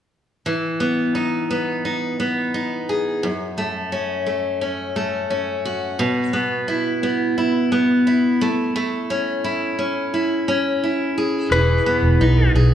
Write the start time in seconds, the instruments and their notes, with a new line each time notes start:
0.46 steel-string acoustic guitar E3
0.80 steel-string acoustic guitar B3
1.15 steel-string acoustic guitar D#4
1.51 steel-string acoustic guitar B3
1.85 steel-string acoustic guitar D#4
2.20 steel-string acoustic guitar B3
2.54 steel-string acoustic guitar D#4
2.89 steel-string acoustic guitar G#4
3.23 steel-string acoustic guitar F#2
3.58 steel-string acoustic guitar A3
3.92 steel-string acoustic guitar C#4
4.26 steel-string acoustic guitar A3
4.61 steel-string acoustic guitar C#4
4.96 steel-string acoustic guitar A3
5.30 steel-string acoustic guitar C#4
5.65 steel-string acoustic guitar F#4
5.99 steel-string acoustic guitar B2
6.33 steel-string acoustic guitar B3
6.68 steel-string acoustic guitar E4
7.03 steel-string acoustic guitar B3
7.38 steel-string acoustic guitar E4
7.72 steel-string acoustic guitar B3
8.07 steel-string acoustic guitar E4
8.41 steel-string acoustic guitar A3
8.76 steel-string acoustic guitar A3
9.10 steel-string acoustic guitar C#4
9.44 steel-string acoustic guitar E4
9.79 steel-string acoustic guitar C#4
10.14 steel-string acoustic guitar E4
10.48 steel-string acoustic guitar C#4
10.84 steel-string acoustic guitar E4
11.18 steel-string acoustic guitar G#4
11.51 fingered electric bass E1, steel-string acoustic guitar E3 G#4, electric slide guitar B4
11.86 steel-string acoustic guitar B3
12.02 fingered electric bass E1
12.20 fingered electric bass B1, steel-string acoustic guitar D#4
12.55 fingered electric bass B1, steel-string acoustic guitar G#4